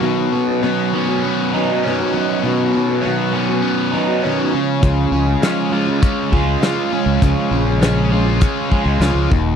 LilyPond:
<<
  \new Staff \with { instrumentName = "Steel-string acoustic guitar" } { \time 4/4 \key des \mixolydian \tempo 4 = 100 <b, dis b cis' fis'>8 <dis b cis' fis'>16 <b cis' fis'>16 <b, dis b cis' fis'>8 <dis b cis' fis'>16 <b cis' fis'>8. <dis b cis' fis'>16 <b cis' fis'>16 <b, dis b cis' fis'>16 <b cis' fis'>16 <dis b cis' fis'>8 | <b, dis b cis' fis'>8 <dis b cis' fis'>16 <b cis' fis'>16 <b, dis b cis' fis'>8 <dis b cis' fis'>16 <b cis' fis'>8. <dis b cis' fis'>16 <b cis' fis'>16 <b, dis b cis' fis'>8 <f aes des' f'>8 | <des f aes des' f'>8 <f aes des' f'>16 <aes des' f'>16 <des f aes des' f'>8 <f aes des' f'>16 <aes des' f'>8. <f aes des' f'>16 <aes des' f'>16 <des f aes des' f'>16 <aes des' f'>16 <f aes des' f'>8 | <des f aes des' f'>8 <f aes des' f'>16 <aes des' f'>16 <des f aes des' f'>8 <f aes des' f'>16 <aes des' f'>8. <f aes des' f'>16 <aes des' f'>16 <des f aes des' f'>8 <ees bes ees' ges'>8 | }
  \new Staff \with { instrumentName = "Overdriven electric guitar" } { \time 4/4 \key des \mixolydian b,8 b8 fis8 b8 cis'8 dis'8 cis'8 fis8 | b,8 b8 fis8 b8 cis'8 dis'8 cis'8 des8 | des8 des'8 aes8 des'8 f'8 aes'8 f'8 aes8 | des8 des'8 aes8 des'8 f'8 aes'8 f'8 ees,8 | }
  \new Staff \with { instrumentName = "Distorted electric guitar" } { \time 4/4 \key des \mixolydian b,4 b8 cis'8 b8 fis8 cis'8 b8 | b,4 b8 cis'8 b8 fis8 cis'8 des8 | des4 des'8 f'8 des'8 aes8 f'8 des'8 | des4 des'8 f'8 des'8 aes8 f'8 ees,8 | }
  \new Staff \with { instrumentName = "Fingered electric bass" } { \clef bass \time 4/4 \key des \mixolydian r1 | r1 | des,8 des,8 r4. des,8 r8. des,16 | des,16 r16 bes,,2 r16 des,16 des,16 des,16 ees,,8 | }
  \new DrumStaff \with { instrumentName = "Drums" } \drummode { \time 4/4 r4 r4 r4 r4 | r4 r4 r4 r4 | <hh bd>4 <hh sn>4 <hh bd>8 bd8 <hh sn>4 | <hh bd>4 <hh sn>4 <hh bd>8 bd8 <hh sn>8 bd8 | }
>>